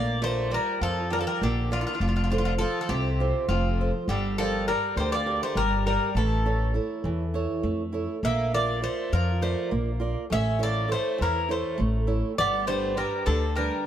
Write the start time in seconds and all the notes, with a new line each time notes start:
Already playing: A#1 A#3 D5
0.22 A3 F4 A#4 C5 D5
0.51 G3 F4 A#4 D5
0.81 F2 F3 A4
1.10 G3 F4 A#4 D5
1.19 F3 A4
1.27 G3 A#4
1.42 A#1 D3 A#3 G4
1.71 D3 F4 A#4 D5
1.79 D3 F4
1.87 D3 F4
1.93 D3 F4
2.00 F1 D3 F3 F4
2.08 D3 F4
2.16 D3 F4
2.24 D3 F4
2.30 D3 F4 A4 C5
2.38 D3 F4
2.45 D3 F4
2.58 F3 F4 A4 C5
2.81 F3 A4
2.89 C2 C3 G4
3.20 F4 A4 C5
3.48 F1 C3 F3 F4
3.81 F4 A4 C5
4.08 G1 D3 G3 G4
4.38 F3 G4 A4 A#4 D5
4.68 G3 G4 A#4 D5
4.96 D2 D3 G3 C5
5.12 A#3 D5
5.26 G4 A#4 D5
5.43 A3 C5
5.55 G1 G3 A#4
5.86 G3 G4 A#4 D5
6.15 A1 E3 A3 A4
6.46 E4 A4 C#5
6.74 E4 A4 C#5
7.04 E2 E3
7.34 E4 A4 C#5
7.63 F2 A3
7.93 E4 A4 C#5
8.23 A#1 A#3 E5
8.54 A#3 F4 A#4 D5
8.82 A3 F4 A#4 C5 D5
9.12 F2 F3 A#4
9.42 A3 F4 A#4 C5 D5
9.71 A#1 A#3
10.00 F4 A#4 D5
10.30 A1 A3 C#4 E5
10.59 E4 A4 C#5 D5
10.63 A#3
10.88 E4 A4 C5 C#5
10.94 A3
11.18 E2 E3 A#4
11.23 E3
11.49 A3 E4 A4 C5 C#5
11.78 A1 A3
12.07 E4 A4 C#5
12.38 G1 G3 B3 D5
12.67 A3 D4 G4 B4 C5
12.97 G3 D4 G4 A#4 B4
13.26 D2 D3 A4
13.55 G3 D4 G4 A#4 B4